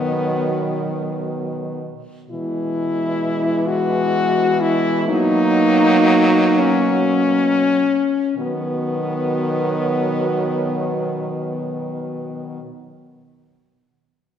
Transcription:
0.00 1.92 B2 medium
0.00 1.92 D#3 medium
0.00 1.93 F#3 medium
0.00 1.79 B3 loud
2.30 7.90 B2 medium
2.30 5.10 E3 medium
2.30 5.09 G#3 medium
2.30 3.69 E4 loud
3.68 4.62 F#4 loud
4.61 5.08 E4 loud
5.08 7.94 F#3 loud
5.08 7.94 A#3 loud
5.08 6.61 D#4 loud
6.59 8.37 C#4 loud
8.37 12.60 B2 medium
8.37 12.61 D#3 medium
8.37 12.61 F#3 medium
8.37 12.61 B3 loud

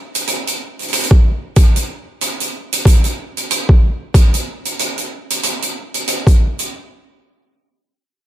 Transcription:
0.15 closed hi-hat medium
0.27 closed hi-hat medium
0.47 closed hi-hat soft
0.79 closed hi-hat soft
0.82 closed hi-hat soft
0.88 closed hi-hat soft
0.93 closed hi-hat medium
0.99 closed hi-hat soft
1.03 closed hi-hat soft
1.11 kick medium
1.56 kick loud
1.56 closed hi-hat medium
1.76 closed hi-hat medium
2.21 closed hi-hat medium
2.40 closed hi-hat soft
2.73 closed hi-hat medium
2.85 kick medium
2.85 closed hi-hat medium
3.04 closed hi-hat soft
3.37 closed hi-hat soft
3.51 closed hi-hat medium
3.69 kick medium
4.14 kick loud
4.14 closed hi-hat medium
4.34 closed hi-hat medium
4.65 closed hi-hat soft
4.79 closed hi-hat medium
4.98 closed hi-hat soft
5.30 closed hi-hat medium
5.43 closed hi-hat medium
5.62 closed hi-hat soft
5.94 closed hi-hat soft
6.08 closed hi-hat medium
6.27 kick medium
6.27 closed hi-hat soft
6.59 closed hi-hat soft

